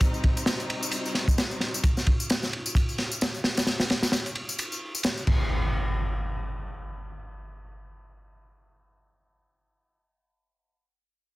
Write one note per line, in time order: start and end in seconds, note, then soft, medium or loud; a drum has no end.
0.00 1.80 C3 medium
0.00 1.80 G3 medium
0.00 1.80 C4 medium
0.00 1.80 D#4 medium
0.00 kick loud
0.00 ride medium
0.00 tambourine soft
0.14 tambourine soft
0.24 kick loud
0.24 ride medium
0.37 ride soft
0.37 tambourine medium
0.46 snare loud
0.46 ride medium
0.46 tambourine soft
0.60 ride soft
0.60 tambourine soft
0.70 ride medium
0.83 tambourine medium
0.91 ride medium
0.91 tambourine soft
1.06 tambourine soft
1.15 snare soft
1.15 ride medium
1.28 kick loud
1.28 tambourine medium
1.38 snare loud
1.38 ride medium
1.38 tambourine soft
1.51 tambourine soft
1.60 snare soft
1.60 ride medium
1.74 tambourine medium
1.84 kick loud
1.84 ride medium
1.84 tambourine soft
1.97 snare soft
1.97 tambourine soft
2.07 kick medium
2.07 ride medium
2.20 tambourine medium
2.30 snare loud
2.30 ride medium
2.30 tambourine soft
2.43 snare soft
2.43 tambourine soft
2.53 ride medium
2.66 tambourine medium
2.75 kick loud
2.75 ride medium
2.89 tambourine soft
2.98 snare soft
2.98 ride medium
3.12 tambourine medium
3.21 snare loud
3.21 ride medium
3.21 tambourine soft
3.34 tambourine soft
3.44 snare loud
3.44 ride medium
3.57 snare medium
3.57 ride medium
3.57 tambourine medium
3.67 snare medium
3.67 ride medium
3.67 tambourine soft
3.80 snare medium
3.80 ride medium
3.80 tambourine soft
3.90 snare loud
3.90 ride medium
4.03 snare medium
4.03 ride medium
4.03 tambourine medium
4.12 snare loud
4.12 ride medium
4.12 tambourine soft
4.26 ride soft
4.26 tambourine soft
4.35 ride medium
4.49 tambourine medium
4.59 ride medium
4.59 tambourine soft
4.72 tambourine soft
4.95 tambourine medium
5.03 snare loud
5.03 ride medium
5.03 tambourine soft
5.18 tambourine soft
5.27 kick loud
5.27 crash medium
5.27 impact medium